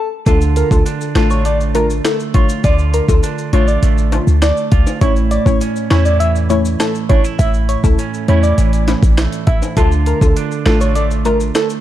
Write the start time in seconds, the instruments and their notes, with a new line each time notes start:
0.26 808-style bass D2, clean electric guitar D3 F4, synth pluck A3 D4 F4, soft synth lead A4, kick, closed hi-hat, maracas
0.41 maracas
0.56 soft synth lead A#4, closed hi-hat, maracas
0.71 808-style bass D2, synth pluck A3 D4 F4, soft synth lead A4, kick, maracas
0.86 clean electric guitar D4, closed hi-hat, maracas
1.01 maracas
1.15 808-style bass A1, synth pluck A3 D4 F4, clean electric guitar A3 D4 F4, soft synth lead A4, cross-stick, snare, closed hi-hat
1.30 soft synth lead C#5, maracas
1.45 clean electric guitar A3, soft synth lead D5, closed hi-hat, maracas
1.61 maracas
1.75 synth pluck A3 D4 F4, soft synth lead A#4, closed hi-hat, maracas
1.90 maracas
2.05 clean electric guitar A3, soft synth lead A4, cross-stick, snare, closed hi-hat, maracas
2.20 maracas
2.34 synth pluck A3 D4 F4, clean electric guitar F4, soft synth lead C#5, kick, closed hi-hat
2.49 maracas
2.64 808-style bass D2, clean electric guitar D3 F4, soft synth lead D5, kick, closed hi-hat, maracas
2.79 maracas
2.94 soft synth lead A#4, closed hi-hat, maracas
3.09 808-style bass D2, synth pluck A3 D4 F4, soft synth lead A4, kick, maracas
3.23 clean electric guitar D4, closed hi-hat, maracas
3.38 maracas
3.53 808-style bass A1, synth pluck A3 D4 F4, clean electric guitar A3 D4 F4, soft synth lead C#5, closed hi-hat
3.68 soft synth lead D5, maracas
3.83 808-style bass A1, clean electric guitar A3, closed hi-hat, maracas
3.98 maracas
4.12 synth pluck A3 D4 F4, closed hi-hat, high timbale, maracas
4.27 808-style bass D2, maracas
4.42 clean electric guitar A3, soft synth lead D5, cross-stick, snare, closed hi-hat, maracas
4.57 maracas
4.72 808-style bass C#2, clean electric guitar F4, kick, closed hi-hat
4.87 high timbale, maracas
5.01 808-style bass A1, clean electric guitar A2 E4, synth pluck A3 C#4 E4, soft synth lead C#5, kick, closed hi-hat, maracas
5.16 maracas
5.31 soft synth lead D5, closed hi-hat, maracas
5.46 808-style bass A1, synth pluck A3 C#4 E4, soft synth lead C#5, kick, maracas
5.61 clean electric guitar C#4, closed hi-hat, maracas
5.76 maracas
5.90 808-style bass E2, synth pluck A3 C#4 E4, clean electric guitar A3 C#4 E4, soft synth lead C#5, cross-stick, snare, closed hi-hat
6.05 soft synth lead D5, maracas
6.20 clean electric guitar E3, soft synth lead E5, closed hi-hat, maracas
6.36 maracas
6.50 synth pluck A3 C#4 E4, soft synth lead C#5, closed hi-hat, maracas
6.65 maracas
6.80 clean electric guitar A3, soft synth lead A4, cross-stick, snare, closed hi-hat, maracas
6.95 maracas
7.09 synth pluck A3 C#4 E4, clean electric guitar D4, soft synth lead C#5, kick, closed hi-hat
7.24 clean electric guitar E4, maracas
7.39 808-style bass A1, clean electric guitar A2 E4, soft synth lead E5, kick, closed hi-hat, maracas
7.54 maracas
7.69 soft synth lead C#5, closed hi-hat, maracas
7.84 808-style bass C#2, synth pluck A3 C#4 E4, soft synth lead A4, kick, maracas
7.99 clean electric guitar C#4, closed hi-hat, maracas
8.14 maracas
8.28 808-style bass E2, clean electric guitar A3 C#4 E4, synth pluck A3 C#4 E4, soft synth lead C#5, closed hi-hat
8.43 soft synth lead D5, maracas
8.58 808-style bass A1, clean electric guitar E3, closed hi-hat, maracas
8.73 closed hi-hat, maracas
8.88 synth pluck A3 C#4 E4, snare, closed hi-hat, high timbale, maracas
9.03 808-style bass A#1, kick, maracas
9.18 clean electric guitar A3, cross-stick, snare, closed hi-hat, maracas
9.33 closed hi-hat, maracas
9.47 808-style bass A1, clean electric guitar E4, soft synth lead E5, kick, closed hi-hat
9.62 high timbale, maracas
9.77 808-style bass D2, clean electric guitar D3 F4, synth pluck A3 D4 F4, soft synth lead A4, kick, closed hi-hat, maracas
9.92 maracas
10.06 soft synth lead A#4, closed hi-hat, maracas
10.21 808-style bass D2, synth pluck A3 D4 F4, soft synth lead A4, kick, maracas
10.36 clean electric guitar D4, closed hi-hat, maracas
10.52 maracas
10.66 808-style bass A1, clean electric guitar A3 D4 F4, synth pluck A3 D4 F4, soft synth lead A4, cross-stick, snare, closed hi-hat
10.81 soft synth lead C#5, maracas
10.95 clean electric guitar A3, soft synth lead D5, closed hi-hat, maracas
11.11 maracas
11.25 synth pluck A3 D4 F4, soft synth lead A#4, closed hi-hat, maracas
11.40 maracas
11.55 clean electric guitar A3, soft synth lead A4, cross-stick, snare, closed hi-hat, maracas
11.70 maracas